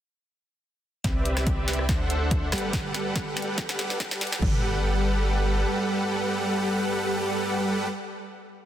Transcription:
1.04 C2 C4 G4 B4 D5 E5, kick, snare, closed hi-hat
1.25 closed hi-hat
1.37 cross-stick, snare
1.47 kick, closed hi-hat
1.68 snare, closed hi-hat
1.73 closed hi-hat
1.79 cross-stick
1.89 D2 D4 A4 C5 E5 F#5, kick, snare, closed hi-hat
2.10 closed hi-hat
2.31 kick, closed hi-hat
2.52 G1 G3 G4 A4 B4 F#5, cross-stick, snare, closed hi-hat
2.58 closed hi-hat
2.73 kick, snare, closed hi-hat
2.94 snare, closed hi-hat
3.16 kick, snare, closed hi-hat
3.37 snare, closed hi-hat
3.42 closed hi-hat
3.58 kick, snare, closed hi-hat
3.69 snare
3.79 snare, closed hi-hat
3.90 snare
4.00 kick, snare, closed hi-hat
4.11 snare
4.21 snare, closed hi-hat
4.27 closed hi-hat
4.32 snare
4.42 G1 G3 G4 A4 B4 F#5, kick, floor tom, crash

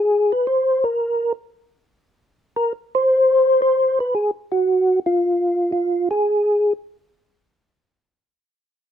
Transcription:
Already playing: G#4
0.32 B4
0.47 C5
0.84 A#4
2.56 A#4
2.95 C5
3.62 C5
4.00 B4
4.15 G#4
4.52 F#4
5.06 F4
5.72 F4
6.11 G#4

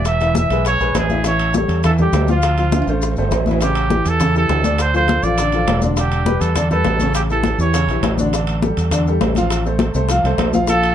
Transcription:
Already playing: E1 E3 E4 E5
0.05 E5, high bongo, high conga, high timbale, maracas
0.20 E3 E4 E5, high bongo, high conga, high timbale, maracas
0.35 E5, high bongo, high conga, low timbale, maracas
0.50 B1 G#3 G#4 B4, high bongo, high conga, high timbale, maracas
0.65 C#5, high bongo, high conga, high timbale, maracas
0.80 A#1 G#3 G#4 B4, high bongo, high conga, maracas
0.95 A1 G#4, high bongo, low bongo, high conga, high timbale, low timbale, maracas
1.10 E3 E4 E5, high conga, maracas
1.24 E3 E4 C#5 E5, high bongo, high conga, high timbale, maracas
1.39 high conga, high timbale, maracas
1.54 G3 G4 A4 C#5, high bongo, high conga, low timbale, maracas
1.68 E2, high conga, high timbale, maracas
1.83 E3 E4 A4 E5, high bongo, high conga, low conga, high timbale, maracas
1.98 G3 G4 A4, high conga, low conga, maracas
2.13 D2, high bongo, low bongo, high conga, high timbale, low timbale, maracas
2.28 F3 F4 F5, high conga, maracas
2.42 high bongo, high timbale, maracas
2.58 F3 F4 F5, high bongo, high conga, high timbale, maracas
2.72 high bongo, high conga, high timbale, maracas
2.82 high timbale
2.87 A1 A3 A4 C5, high bongo, high conga, maracas
3.01 high bongo, high conga, maracas
3.12 low timbale
3.16 G1 A3 A4 C5, high bongo, high conga, maracas
3.22 low timbale
3.31 A1, high bongo, low bongo, high conga, low timbale, maracas
3.46 E3 E4 E5, high conga, maracas
3.51 low timbale
3.61 C#3 C#4 G4 C#5, high bongo, high timbale, maracas
3.75 high conga, high timbale, maracas
3.90 E3 E4 G4, high bongo, high conga, low timbale, maracas
4.05 E2 A4, high conga, high timbale, maracas
4.20 C#3 C#4 C#5, high bongo, high conga, low conga, high timbale, maracas
4.35 E3 E4 G4 A4, high conga, maracas
4.49 D2, high bongo, low bongo, high conga, high timbale, low timbale, maracas
4.64 D3 D4 D5, high conga, high timbale, maracas
4.78 C5, high bongo, high conga, high timbale, maracas
4.94 F3 F4 A4 C5, high bongo, high conga, maracas
5.08 high bongo, high conga, high timbale, low timbale, maracas
5.23 A1 F3 F4 A4 D5, high bongo, high conga, maracas
5.38 D3 D4 D5, high bongo, high conga, high timbale, maracas
5.52 F3 F4 A4, high conga, high timbale, maracas
5.67 E1, high bongo, low bongo, high conga, high timbale, low timbale, maracas
5.82 D3 D4 D5, high bongo, high conga, maracas
5.97 D3 D4 G4 D5, high bongo, high conga, high timbale, maracas
6.12 high conga, high timbale, maracas
6.26 G3 G4 B4, high bongo, high conga, low timbale, maracas
6.41 E2 A4, high conga, high timbale, maracas
6.56 D3 D4 D5, high bongo, high conga, low conga, high timbale, maracas
6.71 G3 G4 A4 B4, high conga, low conga, maracas
6.85 A1, high bongo, low bongo, high conga, high timbale, low timbale, maracas
7.00 C#3 C#4 C#5, high conga, high timbale, maracas
7.14 G4, high bongo, high conga, high timbale, maracas
7.29 E3 E4 G4 A4, high bongo, high conga, maracas
7.43 high bongo, high conga, high timbale, low timbale, maracas
7.58 E2 E3 E4 G4 C#5, high bongo, high conga, maracas
7.73 C#3 C#4 C#5, high bongo, high conga, high timbale, maracas
7.88 A#1 E3 E4 G4, high conga, high timbale, maracas
8.03 A1, high bongo, low bongo, high conga, high timbale, low timbale, maracas
8.18 D3 D4 D5, high bongo, high conga, maracas
8.33 D3 D4 D5, high bongo, high conga, high timbale, maracas
8.47 high conga, high timbale, maracas
8.62 G3 G4 A4, high bongo, high conga, low timbale, maracas
8.77 E2, high conga, high timbale, maracas
8.91 D3 D4 D5, high bongo, high conga, low conga, high timbale, maracas
9.06 G3 G4 A4, high conga, maracas
9.21 A1, high bongo, low bongo, high conga, high timbale, low timbale, maracas
9.35 F3 F4 F5, high conga, high timbale, maracas
9.50 high bongo, high conga, high timbale, maracas
9.65 A3 A4 C5, high bongo, high conga, maracas
9.79 high bongo, high conga, high timbale, low timbale, maracas
9.94 C2 A3 A4 C5, high bongo, high conga, maracas
10.09 F3 F4 F5, high bongo, high conga, high timbale, maracas
10.24 C2 A3 A4 C5, high conga, high timbale, maracas
10.38 A#1, high bongo, low bongo, high conga, high timbale, low timbale, maracas
10.53 F3 F4 F5, high bongo, high conga, maracas
10.67 F3 F4 A4 F5, high bongo, high conga, high timbale, maracas
10.83 high conga, high timbale, maracas

